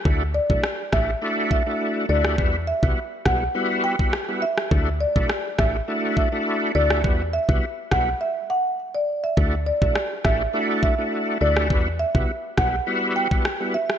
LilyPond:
<<
  \new Staff \with { instrumentName = "Marimba" } { \time 4/4 \key d \mixolydian \tempo 4 = 103 r8 d''16 r8. e''8 r8 e''16 r8. d''16 r16 | r8 e''16 r8. fis''8 r8 g''16 r8. e''16 r16 | r8 d''16 r8. e''8 r8 e''16 r8. d''16 r16 | r8 e''16 r8. fis''8 e''16 r16 fis''16 r8 d''16 r16 e''16 |
r8 d''16 r8. e''8 r8 e''16 r8. d''16 r16 | r8 e''16 r8. fis''8 r8 g''16 r8. e''16 r16 | }
  \new Staff \with { instrumentName = "Tonewheel organ" } { \time 4/4 \key d \mixolydian <a d' e' fis'>16 r8 <a d' e' fis'>16 r8 <a d' e' fis'>16 r16 <a d' e' fis'>8. <a d' e' fis'>8. <a d' e' fis'>8 | <g b e' fis'>16 r8 <g b e' fis'>16 r8 <g b e' fis'>16 r16 <g b e' fis'>8. <g b e' fis'>16 r16 <g b e' fis'>16 r8 | <a d' e' fis'>16 r8 <a d' e' fis'>16 r8 <a d' e' fis'>16 r16 <a d' e' fis'>8. <a d' e' fis'>8. <a d' e' fis'>8 | <g b e' fis'>16 r8 <g b e' fis'>16 r8 <g b e' fis'>16 r2 r16 |
<a d' e' fis'>16 r8 <a d' e' fis'>16 r8 <a d' e' fis'>16 r16 <a d' e' fis'>8. <a d' e' fis'>8. <a d' e' fis'>8 | <g b e' fis'>16 r8 <g b e' fis'>16 r8 <g b e' fis'>16 r16 <g b e' fis'>8. <g b e' fis'>16 r16 <g b e' fis'>16 r8 | }
  \new Staff \with { instrumentName = "FM bass" } { \clef bass \time 4/4 \key d \mixolydian d,8. b,,16 r8 a,,8 r4. d,8 | e,8. c,16 r8 b,,8 r2 | d,8. b,,16 r8 a,,8 r4. d,8 | e,8. c,16 r8 b,,8 r2 |
d,8. b,,16 r8 a,,8 r4. d,8 | e,8. c,16 r8 b,,8 r2 | }
  \new DrumStaff \with { instrumentName = "Drums" } \drummode { \time 4/4 bd8. bd16 ss8 <bd ss>8 r8 bd8 r8. ss16 | bd8. bd16 r8 <bd ss>8 r8. bd16 ss8. ss16 | bd8. bd16 ss8 <bd ss>8 r8 bd8 r8. ss16 | bd8. bd16 r8 <bd ss>8 r4 r4 |
bd8. bd16 ss8 <bd ss>8 r8 bd8 r8. ss16 | bd8. bd16 r8 <bd ss>8 r8. bd16 ss8. ss16 | }
>>